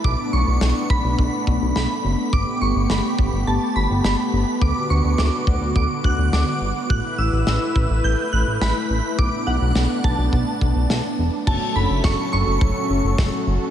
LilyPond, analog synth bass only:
\new Staff \with { instrumentName = "Analog synth bass" } { \clef bass \time 4/4 \key b \minor \tempo 4 = 105 b,,16 r16 b,,16 b,,16 b,,16 r16 b,,16 b,,16 b,,16 r16 b,,16 b,,16 b,,16 r16 fis,,16 r16 | g,,16 r16 g,,16 g,,16 g,,16 r16 g,,16 g,,16 g,,16 r16 g,,16 g,,16 g,,16 r16 g,,16 r16 | d,16 r16 d,16 d,16 d,16 r16 d,16 d,16 d,16 r16 d,16 d,16 d,16 r16 g,,16 r16 | a,,16 r16 a,,16 a,,16 a,,16 r16 a,,16 a,,16 a,,16 r16 a,,16 a,,16 a,,16 r16 a,,16 r16 |
b,,16 r16 b,,16 b,,16 b,,16 r16 b,,16 b,,16 b,,16 r16 b,,16 b,,16 b,,16 r16 e,,16 r16 | fis,,16 r16 fis,,16 fis,,16 fis,,16 r16 fis,,16 fis,,16 fis,,16 r16 fis,,16 fis,,16 fis,,16 r16 fis,,16 r16 | }